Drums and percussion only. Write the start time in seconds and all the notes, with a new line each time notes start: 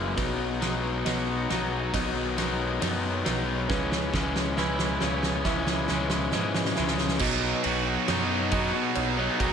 0.17 kick, snare, ride
0.62 snare, ride
1.06 snare, ride
1.50 snare, ride
1.94 kick, snare, ride
2.38 snare, ride
2.82 snare, ride
3.26 snare, ride
3.70 kick, snare
3.92 snare
4.14 kick, snare
4.36 snare
4.57 snare
4.79 snare
5.01 snare
5.23 snare
5.45 kick, snare
5.67 snare
5.88 snare
6.10 snare
6.32 snare
6.54 snare
6.65 snare
6.76 snare
6.88 snare
6.98 snare
7.09 snare
7.19 kick, crash
7.64 ride
8.08 snare, ride
8.51 kick, ride
8.95 ride
9.40 kick, ride